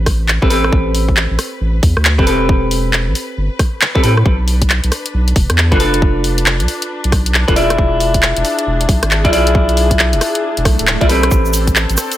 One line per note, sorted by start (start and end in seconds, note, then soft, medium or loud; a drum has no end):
0.00 0.39 A1 medium
0.00 0.39 C4 medium
0.00 0.39 G4 medium
0.00 0.39 A4 medium
0.00 0.39 B4 medium
0.00 8.59 B4 medium
0.06 kick loud
0.06 cross-stick medium
0.06 open hi-hat loud
0.28 clap loud
0.42 0.70 A1 medium
0.42 0.48 C4 medium
0.42 0.48 G4 medium
0.42 0.48 A4 medium
0.42 0.48 B4 medium
0.42 kick loud
0.50 2.15 C4 medium
0.50 2.15 G4 medium
0.50 2.15 A4 medium
0.50 2.15 B4 medium
0.50 open hi-hat medium
0.64 cross-stick medium
0.72 1.27 A1 loud
0.72 kick loud
0.95 open hi-hat loud
1.08 kick medium
1.17 clap loud
1.31 1.37 A1 medium
1.39 cross-stick medium
1.39 open hi-hat medium
1.61 1.80 A1 medium
1.83 1.95 E2 loud
1.83 kick loud
1.83 open hi-hat loud
1.97 2.20 D2 medium
1.97 cross-stick medium
2.05 clap loud
2.18 3.09 E1 medium
2.18 2.24 C4 medium
2.18 2.24 G4 medium
2.18 2.24 A4 medium
2.18 2.24 B4 medium
2.18 kick loud
2.27 3.92 C4 medium
2.27 3.92 G4 medium
2.27 3.92 A4 medium
2.27 3.92 B4 medium
2.27 open hi-hat medium
2.49 kick loud
2.71 open hi-hat loud
2.93 clap loud
3.07 3.14 A1 medium
3.15 open hi-hat medium
3.37 3.49 G1 medium
3.59 kick loud
3.59 cross-stick medium
3.59 open hi-hat loud
3.81 clap loud
3.95 4.01 C4 medium
3.95 4.01 G4 medium
3.95 4.01 A4 medium
3.95 4.01 B4 medium
3.95 kick loud
4.03 4.23 A2 medium
4.03 4.13 C4 medium
4.03 4.13 G4 medium
4.03 4.13 A4 medium
4.03 4.13 B4 medium
4.03 open hi-hat medium
4.17 cross-stick medium
4.25 4.80 B1 loud
4.25 12.17 D4 medium
4.25 kick loud
4.48 open hi-hat loud
4.62 kick medium
4.62 closed hi-hat medium
4.70 clap loud
4.84 4.90 B1 medium
4.84 closed hi-hat medium
4.92 cross-stick medium
4.92 open hi-hat medium
5.06 closed hi-hat medium
5.14 5.33 B1 medium
5.28 closed hi-hat medium
5.36 5.48 F1 loud
5.36 kick loud
5.36 open hi-hat loud
5.50 5.73 E2 medium
5.50 cross-stick medium
5.50 closed hi-hat medium
5.58 clap loud
5.71 6.62 F1 medium
5.71 5.77 D4 medium
5.71 5.77 F4 medium
5.71 5.77 A4 medium
5.71 5.77 B4 medium
5.71 kick loud
5.71 closed hi-hat soft
5.80 7.45 D4 medium
5.80 7.45 F4 medium
5.80 7.45 A4 medium
5.80 7.45 B4 medium
5.80 open hi-hat medium
5.94 closed hi-hat medium
6.02 kick loud
6.24 open hi-hat loud
6.38 closed hi-hat medium
6.46 clap loud
6.60 6.67 B1 medium
6.60 closed hi-hat medium
6.68 open hi-hat medium
6.82 closed hi-hat medium
7.04 7.45 B1 medium
7.04 closed hi-hat medium
7.12 kick loud
7.12 cross-stick medium
7.12 open hi-hat loud
7.26 closed hi-hat medium
7.34 clap loud
7.48 7.76 E1 medium
7.48 7.54 D4 medium
7.48 7.54 F4 medium
7.48 7.54 A4 medium
7.48 7.54 B4 loud
7.48 kick loud
7.48 closed hi-hat soft
7.56 9.21 E4 medium
7.56 9.21 F4 medium
7.56 9.21 G#4 medium
7.56 9.21 D5 medium
7.56 open hi-hat medium
7.70 cross-stick medium
7.70 closed hi-hat medium
7.78 8.33 E1 loud
7.78 kick loud
8.00 open hi-hat loud
8.08 11.31 G#4 medium
8.14 kick medium
8.14 closed hi-hat medium
8.23 clap loud
8.37 8.43 E1 medium
8.37 closed hi-hat medium
8.45 open hi-hat medium
8.59 closed hi-hat medium
8.67 8.86 E1 medium
8.81 closed hi-hat medium
8.89 9.00 B1 loud
8.89 kick loud
8.89 open hi-hat loud
9.03 9.26 G#1 medium
9.03 cross-stick medium
9.03 closed hi-hat medium
9.11 clap loud
9.24 10.15 B1 medium
9.24 9.30 E4 medium
9.24 9.30 F4 medium
9.24 9.30 G#4 medium
9.24 9.30 D5 medium
9.24 kick loud
9.24 closed hi-hat soft
9.32 10.98 E4 medium
9.32 10.98 F4 medium
9.32 10.98 G#4 medium
9.32 10.98 D5 medium
9.32 open hi-hat medium
9.47 closed hi-hat medium
9.55 kick loud
9.69 closed hi-hat soft
9.77 open hi-hat loud
9.91 kick medium
9.91 closed hi-hat medium
9.99 clap loud
10.13 10.20 E1 medium
10.13 closed hi-hat medium
10.21 cross-stick medium
10.21 open hi-hat loud
10.35 closed hi-hat medium
10.43 swell medium
10.57 10.67 E1 medium
10.57 closed hi-hat medium
10.65 10.77 B1 medium
10.65 kick loud
10.65 cross-stick medium
10.65 open hi-hat loud
10.79 10.97 D1 medium
10.79 closed hi-hat medium
10.87 clap loud
11.01 11.29 B1 loud
11.01 11.07 E4 medium
11.01 11.07 F4 medium
11.01 11.07 G#4 medium
11.01 11.07 D5 medium
11.01 kick loud
11.01 closed hi-hat soft
11.09 12.17 C4 medium
11.09 12.17 G4 medium
11.09 12.17 A4 medium
11.09 12.17 B4 medium
11.09 open hi-hat medium
11.23 cross-stick medium
11.23 closed hi-hat medium
11.31 11.86 A1 loud
11.31 12.17 C4 medium
11.31 kick loud
11.31 shaker soft
11.42 12.17 A4 medium
11.42 shaker soft
11.54 open hi-hat loud
11.54 shaker medium
11.67 kick medium
11.67 closed hi-hat medium
11.67 shaker soft
11.76 clap loud
11.76 shaker medium
11.89 11.96 A1 medium
11.89 closed hi-hat medium
11.89 shaker soft
11.97 cross-stick medium
11.97 open hi-hat medium
11.97 shaker medium
12.12 closed hi-hat medium
12.12 shaker soft